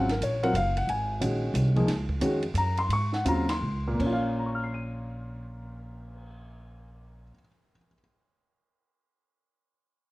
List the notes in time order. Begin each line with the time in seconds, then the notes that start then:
Already playing: G#1
0.09 A#4, snare, ride
0.20 A#1 C#5, hi-hat pedal, ride
0.43 F#3 C4 F4 A#4 F#5, ride
0.54 F#1 F5, hi-hat pedal, ride
0.77 F#5, ride
0.87 G#1 G#5, ride
1.20 A#1 D#3 G#3 C#4 F#4, hi-hat pedal, ride
1.54 C2, hi-hat pedal, ride
1.76 F3 A#3 D#4 G#4, ride
1.87 C#2, snare, ride
2.09 kick
2.20 F2 D#3 G#3 C#4 F#4, hi-hat pedal, ride
2.43 ride
2.54 F#2 A#5, hi-hat pedal, ride
2.77 C6, ride
2.89 G#2, ride
2.93 C#6
3.12 F#5, snare
3.25 D#2 C#3 F#3 C4 F4 A#5, hi-hat pedal, ride
3.49 C6, snare, ride
3.61 C#2
3.88 A#2
3.94 A#3
3.99 A#1 C#4, kick, crash
4.06 F4
4.13 F5
4.25 cymbal swell
4.39 A#5
4.46 C#6
4.55 F6
4.64 C7
4.74 D#7